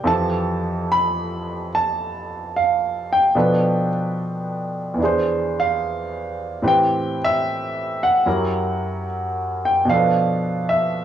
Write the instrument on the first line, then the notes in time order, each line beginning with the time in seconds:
grand piano
0.04 F2 E3 F3 G4 A4 A5
0.92 B5
1.75 A5
2.56 F5
3.12 G5
3.35 B2 F3 D4 A4 B4
4.94 E2 E3
5.00 D4 G#4
5.05 C5
5.60 F5
6.62 A2 E3 C4 G4 B4
6.68 G5
7.25 E5
8.03 F#5
8.26 F#2 F#3 E4 G4 A#4
9.65 G5
9.85 B2 F3
9.89 D4 A4 F5
9.96 B4
10.69 E5